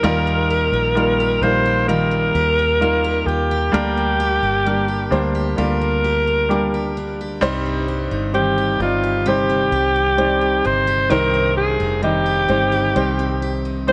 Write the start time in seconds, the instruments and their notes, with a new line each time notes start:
Already playing: steel-string acoustic guitar C3 C4 D#4, alto saxophone A#4
0.03 fingered electric bass D#2, grand piano A#2 G3 D#4 F4 A#4, steel-string acoustic guitar D#3 G4
0.27 steel-string acoustic guitar A#3
0.50 steel-string acoustic guitar G4
0.72 fingered electric bass A#1, steel-string acoustic guitar F4
0.95 grand piano G3 D#4 F4 A#4, steel-string acoustic guitar A#3
1.20 steel-string acoustic guitar G4
1.41 fingered electric bass A#1, grand piano G3 D#4 F4 A#4, steel-string acoustic guitar F4, alto saxophone C5
1.66 steel-string acoustic guitar G4
1.87 steel-string acoustic guitar D#3 G4, grand piano G3 D#4 F4 A#4, alto saxophone A#4
2.11 steel-string acoustic guitar A#3
2.34 fingered electric bass D#2, steel-string acoustic guitar G4
2.59 steel-string acoustic guitar F4
2.80 grand piano G3 D#4 F4 A#4, steel-string acoustic guitar A#3
3.04 steel-string acoustic guitar G4
3.26 fingered electric bass D#2, steel-string acoustic guitar F4, alto saxophone G4
3.51 steel-string acoustic guitar G4
3.72 fingered electric bass D2, grand piano D3 G3 A#3 D4 A#4, steel-string acoustic guitar D3 G4, alto saxophone G4
3.97 steel-string acoustic guitar A#3
4.20 steel-string acoustic guitar G4
4.42 fingered electric bass G1, steel-string acoustic guitar D4
4.66 grand piano G3 A#3 D4 A#4, steel-string acoustic guitar G3
4.88 steel-string acoustic guitar G4
5.11 fingered electric bass D2, grand piano G3 A#3 D4 C5, steel-string acoustic guitar D4
5.35 steel-string acoustic guitar G4
5.56 fingered electric bass D2, steel-string acoustic guitar D3 G4, grand piano G3 A#3 D4 F4, alto saxophone A#4
5.81 steel-string acoustic guitar A#3
6.04 steel-string acoustic guitar G4
6.27 steel-string acoustic guitar D4
6.49 grand piano G3 A#3 D4 G4, steel-string acoustic guitar G3
6.74 steel-string acoustic guitar G4
6.97 steel-string acoustic guitar D4
7.21 steel-string acoustic guitar G4
7.41 fingered electric bass C2, grand piano G2 G3 C4 D#4 C5, steel-string acoustic guitar C3 G4
7.66 steel-string acoustic guitar C4
7.88 steel-string acoustic guitar G4
8.11 fingered electric bass G1, steel-string acoustic guitar D#4
8.33 steel-string acoustic guitar D#3, grand piano G3 C4 D#4 C5, alto saxophone G4
8.58 steel-string acoustic guitar G4
8.79 fingered electric bass G1, grand piano G3 C4 D#4 D5, steel-string acoustic guitar D#4, alto saxophone F4
9.03 steel-string acoustic guitar G4
9.26 steel-string acoustic guitar C3 G4, grand piano G3 C4 D#4 C5, alto saxophone G4
9.50 steel-string acoustic guitar C4
9.71 fingered electric bass C2, steel-string acoustic guitar G4
9.96 steel-string acoustic guitar D#4
10.17 steel-string acoustic guitar D#3, grand piano G3 C4 D#4 C5
10.25 grand piano D5
10.41 steel-string acoustic guitar G4
10.65 fingered electric bass G1, steel-string acoustic guitar D#4, alto saxophone C5
10.87 steel-string acoustic guitar G4
11.10 fingered electric bass C2, grand piano G2 D#3 C4 D#4 C5, steel-string acoustic guitar C3 G4, alto saxophone A#4
11.34 steel-string acoustic guitar C4
11.57 alto saxophone G#4
11.80 fingered electric bass F1, steel-string acoustic guitar D#4
12.02 steel-string acoustic guitar D#3, grand piano G3 C4 D#4 D#5, alto saxophone G4
12.26 steel-string acoustic guitar G4
12.48 fingered electric bass G1, grand piano G3 C4 D#4 C5, steel-string acoustic guitar D#4
12.72 steel-string acoustic guitar G4
12.95 fingered electric bass C2, steel-string acoustic guitar C3 G4, grand piano G3 C4 D#4 C5
13.19 steel-string acoustic guitar C4
13.42 steel-string acoustic guitar G4
13.65 steel-string acoustic guitar D#4
13.87 steel-string acoustic guitar D#3, grand piano G3 C4 D#4 C5, alto saxophone C5